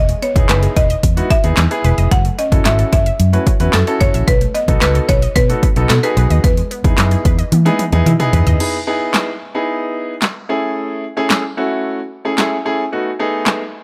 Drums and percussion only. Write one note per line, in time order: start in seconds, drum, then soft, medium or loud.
0.09 closed hi-hat medium
0.22 closed hi-hat medium
0.36 kick loud
0.36 closed hi-hat medium
0.49 snare medium
0.49 clap loud
0.49 closed hi-hat loud
0.63 closed hi-hat medium
0.77 kick medium
0.77 closed hi-hat medium
0.90 closed hi-hat medium
1.03 kick medium
1.03 closed hi-hat loud
1.17 closed hi-hat soft
1.30 kick loud
1.30 closed hi-hat medium
1.44 closed hi-hat soft
1.57 snare medium
1.57 clap loud
1.57 closed hi-hat medium
1.71 closed hi-hat medium
1.84 closed hi-hat medium
1.98 closed hi-hat medium
2.11 kick loud
2.11 closed hi-hat medium
2.25 closed hi-hat medium
2.39 closed hi-hat medium
2.52 kick loud
2.52 closed hi-hat medium
2.65 snare medium
2.65 clap loud
2.65 closed hi-hat medium
2.79 closed hi-hat medium
2.93 kick loud
2.93 closed hi-hat medium
3.06 closed hi-hat medium
3.20 closed hi-hat loud
3.33 closed hi-hat medium
3.47 kick medium
3.47 closed hi-hat medium
3.60 closed hi-hat medium
3.73 snare medium
3.73 clap loud
3.73 closed hi-hat medium
3.87 closed hi-hat soft
4.01 kick loud
4.01 closed hi-hat medium
4.14 closed hi-hat medium
4.28 kick loud
4.28 closed hi-hat medium
4.41 closed hi-hat medium
4.55 closed hi-hat medium
4.68 kick loud
4.68 closed hi-hat medium
4.82 snare medium
4.82 clap loud
4.82 closed hi-hat medium
4.95 closed hi-hat medium
5.09 kick loud
5.09 closed hi-hat medium
5.22 closed hi-hat medium
5.36 kick medium
5.36 closed hi-hat loud
5.50 closed hi-hat medium
5.63 kick medium
5.63 closed hi-hat medium
5.76 closed hi-hat medium
5.89 snare medium
5.89 clap loud
5.89 closed hi-hat medium
6.04 closed hi-hat medium
6.17 closed hi-hat medium
6.30 closed hi-hat medium
6.44 kick loud
6.44 closed hi-hat medium
6.57 closed hi-hat medium
6.71 closed hi-hat medium
6.84 kick loud
6.84 closed hi-hat medium
6.98 snare medium
6.98 clap loud
6.98 closed hi-hat loud
7.11 closed hi-hat medium
7.25 kick loud
7.25 closed hi-hat medium
7.39 closed hi-hat medium
7.52 closed hi-hat loud
7.52 high tom medium
7.66 closed hi-hat soft
7.66 high tom medium
7.79 closed hi-hat medium
7.79 mid tom medium
7.92 closed hi-hat soft
7.92 mid tom medium
8.06 closed hi-hat medium
8.06 mid tom medium
8.20 closed hi-hat medium
8.20 mid tom medium
8.33 closed hi-hat medium
8.33 floor tom loud
8.47 closed hi-hat medium
8.47 floor tom medium
8.60 crash medium
9.14 snare medium
9.14 clap loud
10.22 snare medium
10.22 clap loud
11.30 snare medium
11.30 clap loud
12.38 snare medium
12.38 clap medium
13.46 snare medium
13.46 clap loud